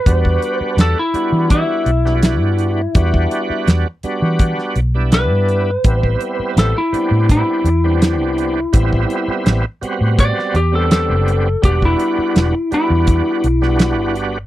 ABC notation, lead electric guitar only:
X:1
M:4/4
L:1/16
Q:1/4=83
K:Em
V:1 name="Lead electric guitar"
B4 A E3 E8- | E4 z8 B4- | B4 A E3 E8- | E4 z4 d2 G A A4 |
G E4- E E8 z2 |]